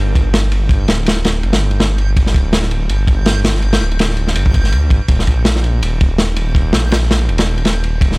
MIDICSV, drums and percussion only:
0, 0, Header, 1, 2, 480
1, 0, Start_track
1, 0, Key_signature, -2, "minor"
1, 0, Tempo, 365854
1, 918, Time_signature, 4, 2, 24, 8
1, 10735, End_track
2, 0, Start_track
2, 0, Title_t, "Drums"
2, 202, Note_on_c, 9, 36, 89
2, 205, Note_on_c, 9, 51, 69
2, 333, Note_off_c, 9, 36, 0
2, 336, Note_off_c, 9, 51, 0
2, 441, Note_on_c, 9, 51, 91
2, 444, Note_on_c, 9, 38, 108
2, 572, Note_off_c, 9, 51, 0
2, 575, Note_off_c, 9, 38, 0
2, 678, Note_on_c, 9, 51, 73
2, 809, Note_off_c, 9, 51, 0
2, 909, Note_on_c, 9, 36, 95
2, 926, Note_on_c, 9, 51, 68
2, 1040, Note_off_c, 9, 36, 0
2, 1057, Note_off_c, 9, 51, 0
2, 1153, Note_on_c, 9, 51, 74
2, 1162, Note_on_c, 9, 38, 96
2, 1285, Note_off_c, 9, 51, 0
2, 1293, Note_off_c, 9, 38, 0
2, 1396, Note_on_c, 9, 51, 93
2, 1417, Note_on_c, 9, 38, 116
2, 1527, Note_off_c, 9, 51, 0
2, 1528, Note_off_c, 9, 38, 0
2, 1528, Note_on_c, 9, 38, 41
2, 1634, Note_on_c, 9, 51, 85
2, 1644, Note_off_c, 9, 38, 0
2, 1644, Note_on_c, 9, 38, 103
2, 1765, Note_off_c, 9, 51, 0
2, 1775, Note_off_c, 9, 38, 0
2, 1878, Note_on_c, 9, 51, 61
2, 2007, Note_off_c, 9, 51, 0
2, 2007, Note_on_c, 9, 38, 111
2, 2007, Note_on_c, 9, 51, 72
2, 2138, Note_off_c, 9, 38, 0
2, 2139, Note_off_c, 9, 51, 0
2, 2242, Note_on_c, 9, 51, 56
2, 2363, Note_on_c, 9, 38, 105
2, 2364, Note_off_c, 9, 51, 0
2, 2364, Note_on_c, 9, 51, 74
2, 2494, Note_off_c, 9, 38, 0
2, 2495, Note_off_c, 9, 51, 0
2, 2600, Note_on_c, 9, 51, 61
2, 2732, Note_off_c, 9, 51, 0
2, 2841, Note_on_c, 9, 36, 113
2, 2842, Note_on_c, 9, 51, 85
2, 2969, Note_on_c, 9, 38, 47
2, 2972, Note_off_c, 9, 36, 0
2, 2974, Note_off_c, 9, 51, 0
2, 3076, Note_on_c, 9, 36, 100
2, 3094, Note_on_c, 9, 51, 66
2, 3101, Note_off_c, 9, 38, 0
2, 3207, Note_off_c, 9, 36, 0
2, 3225, Note_off_c, 9, 51, 0
2, 3316, Note_on_c, 9, 38, 109
2, 3317, Note_on_c, 9, 51, 85
2, 3445, Note_off_c, 9, 38, 0
2, 3445, Note_on_c, 9, 38, 48
2, 3448, Note_off_c, 9, 51, 0
2, 3556, Note_on_c, 9, 51, 74
2, 3576, Note_off_c, 9, 38, 0
2, 3687, Note_off_c, 9, 51, 0
2, 3797, Note_on_c, 9, 51, 90
2, 3928, Note_off_c, 9, 51, 0
2, 4034, Note_on_c, 9, 36, 85
2, 4039, Note_on_c, 9, 51, 66
2, 4165, Note_off_c, 9, 36, 0
2, 4170, Note_off_c, 9, 51, 0
2, 4273, Note_on_c, 9, 51, 90
2, 4280, Note_on_c, 9, 38, 120
2, 4404, Note_off_c, 9, 51, 0
2, 4412, Note_off_c, 9, 38, 0
2, 4520, Note_on_c, 9, 38, 104
2, 4520, Note_on_c, 9, 51, 89
2, 4651, Note_off_c, 9, 38, 0
2, 4651, Note_on_c, 9, 38, 37
2, 4652, Note_off_c, 9, 51, 0
2, 4754, Note_on_c, 9, 51, 57
2, 4782, Note_off_c, 9, 38, 0
2, 4885, Note_off_c, 9, 51, 0
2, 4892, Note_on_c, 9, 38, 104
2, 4898, Note_on_c, 9, 51, 85
2, 5003, Note_off_c, 9, 38, 0
2, 5003, Note_on_c, 9, 38, 39
2, 5029, Note_off_c, 9, 51, 0
2, 5134, Note_off_c, 9, 38, 0
2, 5136, Note_on_c, 9, 51, 59
2, 5236, Note_off_c, 9, 51, 0
2, 5236, Note_on_c, 9, 51, 88
2, 5250, Note_on_c, 9, 38, 101
2, 5367, Note_off_c, 9, 51, 0
2, 5369, Note_off_c, 9, 38, 0
2, 5369, Note_on_c, 9, 38, 36
2, 5466, Note_on_c, 9, 51, 63
2, 5501, Note_off_c, 9, 38, 0
2, 5598, Note_off_c, 9, 51, 0
2, 5607, Note_on_c, 9, 38, 48
2, 5713, Note_on_c, 9, 51, 99
2, 5739, Note_off_c, 9, 38, 0
2, 5844, Note_off_c, 9, 51, 0
2, 5850, Note_on_c, 9, 36, 96
2, 5957, Note_on_c, 9, 51, 84
2, 5961, Note_off_c, 9, 36, 0
2, 5961, Note_on_c, 9, 36, 90
2, 6085, Note_on_c, 9, 38, 35
2, 6088, Note_off_c, 9, 51, 0
2, 6092, Note_off_c, 9, 36, 0
2, 6198, Note_on_c, 9, 51, 74
2, 6216, Note_off_c, 9, 38, 0
2, 6329, Note_off_c, 9, 51, 0
2, 6434, Note_on_c, 9, 36, 87
2, 6439, Note_on_c, 9, 51, 63
2, 6565, Note_off_c, 9, 36, 0
2, 6570, Note_off_c, 9, 51, 0
2, 6669, Note_on_c, 9, 51, 96
2, 6671, Note_on_c, 9, 36, 123
2, 6800, Note_off_c, 9, 51, 0
2, 6802, Note_off_c, 9, 36, 0
2, 6813, Note_on_c, 9, 38, 42
2, 6914, Note_on_c, 9, 51, 73
2, 6921, Note_on_c, 9, 36, 90
2, 6944, Note_off_c, 9, 38, 0
2, 7045, Note_off_c, 9, 51, 0
2, 7052, Note_off_c, 9, 36, 0
2, 7150, Note_on_c, 9, 38, 116
2, 7151, Note_on_c, 9, 51, 80
2, 7281, Note_off_c, 9, 38, 0
2, 7282, Note_off_c, 9, 51, 0
2, 7292, Note_on_c, 9, 38, 50
2, 7397, Note_on_c, 9, 51, 69
2, 7423, Note_off_c, 9, 38, 0
2, 7529, Note_off_c, 9, 51, 0
2, 7643, Note_on_c, 9, 51, 95
2, 7774, Note_off_c, 9, 51, 0
2, 7881, Note_on_c, 9, 51, 63
2, 7885, Note_on_c, 9, 36, 100
2, 8012, Note_off_c, 9, 51, 0
2, 8016, Note_off_c, 9, 36, 0
2, 8113, Note_on_c, 9, 38, 109
2, 8117, Note_on_c, 9, 51, 85
2, 8244, Note_off_c, 9, 38, 0
2, 8249, Note_off_c, 9, 51, 0
2, 8349, Note_on_c, 9, 51, 89
2, 8480, Note_off_c, 9, 51, 0
2, 8591, Note_on_c, 9, 36, 84
2, 8605, Note_on_c, 9, 51, 68
2, 8723, Note_off_c, 9, 36, 0
2, 8737, Note_off_c, 9, 51, 0
2, 8828, Note_on_c, 9, 38, 118
2, 8851, Note_on_c, 9, 51, 78
2, 8960, Note_off_c, 9, 38, 0
2, 8982, Note_off_c, 9, 51, 0
2, 9073, Note_on_c, 9, 51, 86
2, 9084, Note_on_c, 9, 38, 125
2, 9205, Note_off_c, 9, 51, 0
2, 9215, Note_off_c, 9, 38, 0
2, 9215, Note_on_c, 9, 38, 40
2, 9325, Note_off_c, 9, 38, 0
2, 9325, Note_on_c, 9, 38, 105
2, 9328, Note_on_c, 9, 51, 81
2, 9456, Note_off_c, 9, 38, 0
2, 9459, Note_off_c, 9, 51, 0
2, 9561, Note_on_c, 9, 51, 62
2, 9682, Note_off_c, 9, 51, 0
2, 9682, Note_on_c, 9, 51, 91
2, 9697, Note_on_c, 9, 38, 99
2, 9814, Note_off_c, 9, 51, 0
2, 9828, Note_off_c, 9, 38, 0
2, 9940, Note_on_c, 9, 51, 58
2, 10036, Note_off_c, 9, 51, 0
2, 10036, Note_on_c, 9, 51, 83
2, 10044, Note_on_c, 9, 38, 91
2, 10167, Note_off_c, 9, 51, 0
2, 10175, Note_off_c, 9, 38, 0
2, 10281, Note_on_c, 9, 51, 67
2, 10412, Note_off_c, 9, 51, 0
2, 10511, Note_on_c, 9, 36, 116
2, 10518, Note_on_c, 9, 51, 95
2, 10643, Note_off_c, 9, 36, 0
2, 10647, Note_on_c, 9, 38, 41
2, 10650, Note_off_c, 9, 51, 0
2, 10735, Note_off_c, 9, 38, 0
2, 10735, End_track
0, 0, End_of_file